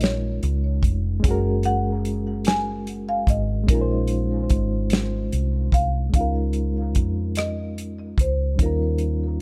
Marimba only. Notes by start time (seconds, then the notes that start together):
0.03 C#5
1.66 F#5
2.47 G#5
3.09 F5
3.30 D#5
3.70 A#4
5.74 F5
6.15 F5
7.37 D#5
8.21 C5
8.62 A#4